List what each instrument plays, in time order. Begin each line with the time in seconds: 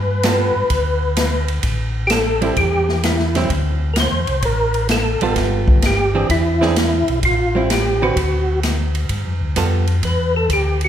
Already playing: tonewheel organ G2 B4
0.23 hollow-body jazz guitar G3 B3 F4 A4, snare, hi-hat pedal, ride
0.56 tonewheel organ G2
0.70 tonewheel organ D2, kick, ride
1.16 snare, hi-hat pedal, ride
1.48 ride
1.63 tonewheel organ A1, kick, ride
2.07 tonewheel organ G4 A4, snare, hi-hat pedal, ride
2.41 hollow-body jazz guitar G3 C4 E4, ride
2.56 tonewheel organ E2 G4, kick, ride
2.89 snare
3.03 tonewheel organ E4, snare, hi-hat pedal, ride
3.19 snare
3.35 hollow-body jazz guitar D3 F#3 C4 E4, snare, ride
3.50 tonewheel organ D2, kick, ride
3.93 tonewheel organ A#4, snare, hi-hat pedal, ride
4.00 tonewheel organ C5
4.12 tonewheel organ E2
4.27 tonewheel organ C2, ride
4.42 tonewheel organ A1 A#4, kick, ride
4.74 ride
4.89 tonewheel organ A4, snare, hi-hat pedal, ride
5.21 tonewheel organ A1, hollow-body jazz guitar G3 B3 F4 A4, ride
5.36 tonewheel organ G1, kick, snare, ride
5.68 kick
5.82 tonewheel organ G4, snare, hi-hat pedal, ride
6.15 hollow-body jazz guitar E3 C4 D4 G#4
6.29 tonewheel organ E2 E4, kick, ride
6.61 hollow-body jazz guitar E3 C4 D4 G#4, snare
6.76 snare, hi-hat pedal, ride
7.08 tonewheel organ B1, ride
7.23 tonewheel organ A1 F4, kick, ride
7.55 hollow-body jazz guitar G3 C4 E4
7.70 tonewheel organ G4, snare, hi-hat pedal, ride
8.02 hollow-body jazz guitar D3 C4 F#4 B4, tonewheel organ F#4
8.16 tonewheel organ D2, kick, ride
8.63 snare, hi-hat pedal, ride
8.95 ride
9.09 tonewheel organ G2, kick, ride
9.25 tonewheel organ F2
9.41 tonewheel organ D2
9.56 tonewheel organ F2, hollow-body jazz guitar G3 B3 F4 A4, kick, hi-hat pedal, ride
9.87 ride
10.03 tonewheel organ E2 B4, kick, ride
10.36 tonewheel organ A4
10.49 tonewheel organ D2 G4, kick, hi-hat pedal, ride
10.81 tonewheel organ F#4, ride